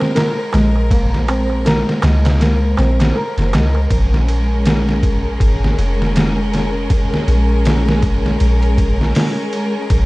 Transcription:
0.00 3.87 G#3 medium
0.00 0.14 C4 medium
0.00 3.87 A#4 medium
0.00 3.93 C5 medium
0.00 snare soft
0.00 darbuka tek medium
0.15 0.36 A#4 loud
0.15 snare loud
0.15 ride medium
0.15 darbuka tek soft
0.53 1.84 A#1 medium
0.53 0.89 G#3 medium
0.53 snare medium
0.53 ride medium
0.53 darbuka tek medium
0.75 darbuka tek soft
0.91 1.27 A#3 medium
0.91 kick loud
0.91 ride medium
0.91 darbuka tek soft
1.14 snare soft
1.28 1.64 C4 medium
1.28 ride medium
1.28 darbuka tek medium
1.50 darbuka tek soft
1.65 1.86 A#4 loud
1.65 snare loud
1.65 ride medium
1.65 darbuka tek soft
1.89 snare medium
2.02 2.75 C#2 medium
2.02 2.39 G#3 medium
2.02 snare loud
2.02 ride medium
2.02 darbuka tek medium
2.25 snare medium
2.25 ride medium
2.25 darbuka tek medium
2.40 2.76 A#3 medium
2.40 snare medium
2.40 ride medium
2.40 darbuka tek soft
2.77 3.12 A#1 medium
2.77 3.14 C4 medium
2.77 snare soft
2.77 ride medium
2.77 darbuka tek medium
3.00 snare loud
3.00 ride medium
3.00 darbuka tek medium
3.15 3.36 A#4 loud
3.15 darbuka tek soft
3.38 3.55 F1 medium
3.38 snare medium
3.38 ride medium
3.53 3.87 C#2 medium
3.53 3.89 G#3 medium
3.53 snare loud
3.53 ride medium
3.53 darbuka tek medium
3.75 darbuka tek soft
3.89 5.38 A#1 medium
3.89 10.06 G#3 medium
3.89 10.06 C#4 medium
3.89 10.06 G#4 medium
3.89 10.06 A#4 medium
3.89 kick loud
3.89 ride medium
4.14 snare soft
4.28 ride medium
4.66 snare loud
4.66 ride medium
4.89 snare soft
5.03 kick loud
5.03 ride medium
5.40 5.74 G#1 medium
5.40 kick loud
5.40 ride medium
5.64 snare soft
5.78 6.88 F1 medium
5.78 ride medium
6.02 snare soft
6.16 snare loud
6.16 ride medium
6.53 snare medium
6.53 ride medium
6.90 kick loud
6.90 ride medium
7.14 snare soft
7.28 8.37 A#1 medium
7.28 ride medium
7.65 snare loud
7.65 ride medium
7.88 snare medium
8.02 kick medium
8.02 ride medium
8.26 snare soft
8.40 9.13 A#1 loud
8.40 ride medium
8.63 ride soft
8.78 kick loud
8.78 ride medium
9.01 snare soft
9.15 snare loud
9.15 open hi-hat medium
9.53 ride medium
9.90 10.06 A#1 loud
9.90 kick loud
9.90 ride loud

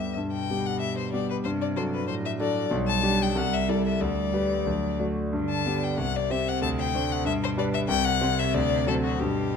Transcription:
0.00 0.17 G2 medium
0.00 0.19 G3 soft
0.00 0.19 B3 soft
0.00 0.19 G4 soft
0.00 0.16 E5 medium
0.17 0.48 G2 medium
0.17 1.41 B2 medium
0.33 0.68 G5 medium
0.50 1.09 G3 soft
0.50 1.09 B3 soft
0.50 1.10 G4 soft
0.66 0.80 F#5 medium
0.81 0.96 E5 medium
0.98 1.12 C5 medium
1.13 1.41 G3 soft
1.13 1.42 B3 soft
1.13 1.42 G4 soft
1.13 1.28 D5 medium
1.30 1.36 B4 medium
1.44 1.76 G2 medium
1.44 2.07 C3 medium
1.44 1.50 C5 medium
1.61 1.68 D5 medium
1.77 2.36 F#3 soft
1.77 2.36 D4 soft
1.77 2.36 A4 soft
1.77 1.83 C5 medium
1.94 2.07 B4 medium
2.08 2.71 A2 medium
2.08 2.14 C5 medium
2.25 2.31 E5 medium
2.39 2.68 F#3 soft
2.39 2.68 D4 soft
2.39 2.69 A4 medium
2.39 2.71 D5 medium
2.71 3.02 B1 medium
2.71 3.32 G3 medium
2.88 3.24 A5 medium
3.03 3.32 G3 soft
3.03 3.33 D4 soft
3.03 3.33 G4 medium
3.22 3.39 G5 medium
3.35 3.67 C2 medium
3.35 4.00 G3 medium
3.35 3.55 F#5 medium
3.54 3.71 E5 medium
3.68 3.98 G3 soft
3.68 3.98 E4 soft
3.68 3.98 A4 soft
3.68 3.85 D5 medium
3.87 4.03 E5 medium
4.00 4.33 D2 medium
4.00 4.69 G3 medium
4.00 5.00 D5 medium
4.33 4.63 G3 soft
4.33 4.64 G4 soft
4.33 4.64 B4 soft
4.67 4.99 D2 medium
4.67 5.13 F#3 medium
4.99 5.30 A3 soft
4.99 5.30 F#4 soft
4.99 5.30 D5 soft
5.33 5.65 G2 medium
5.33 6.00 D3 medium
5.50 5.85 A5 medium
5.66 5.95 B3 soft
5.66 5.95 G4 soft
5.66 5.96 D5 soft
5.84 5.97 G5 medium
5.97 6.29 C2 medium
5.97 7.27 C3 medium
5.97 6.18 F#5 medium
6.16 6.33 D5 medium
6.30 6.59 C4 soft
6.30 6.60 G4 soft
6.30 6.60 C5 soft
6.30 6.50 E5 medium
6.48 6.62 F#5 medium
6.62 6.93 D2 medium
6.62 6.69 A5 medium
6.79 7.13 G5 medium
6.94 7.23 A3 soft
6.94 7.23 D4 soft
6.94 7.23 C5 medium
7.12 7.25 F#5 medium
7.25 7.56 G2 medium
7.25 7.90 B2 medium
7.25 7.32 E5 medium
7.44 7.50 C5 medium
7.57 7.86 G3 medium
7.57 7.86 D4 medium
7.57 7.86 B4 medium
7.57 7.65 D5 medium
7.74 7.80 E5 medium
7.88 8.20 C2 medium
7.88 9.20 C3 medium
7.88 8.06 G5 loud
8.05 8.40 F#5 loud
8.21 8.50 G3 medium
8.21 8.51 C4 medium
8.21 8.51 C5 medium
8.39 8.56 E5 medium
8.54 8.86 D2 medium
8.54 8.87 D5 loud
8.87 9.17 F#3 medium
8.87 9.17 C4 medium
8.87 8.94 A4 medium
8.87 9.17 A4 medium
9.04 9.21 F#4 medium
9.19 9.53 G2 medium
9.19 9.57 B2 medium
9.19 9.57 G4 medium

